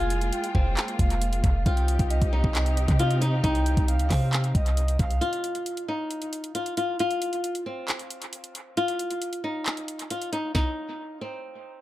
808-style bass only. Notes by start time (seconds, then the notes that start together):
Already playing: F1
0.55 F1
0.99 F1
1.44 F1
1.66 C2
1.99 C2
2.22 C2
2.44 C2
2.88 C3
3.44 C2
3.77 C2
3.99 C#2
4.11 C3
4.55 C2
4.99 C2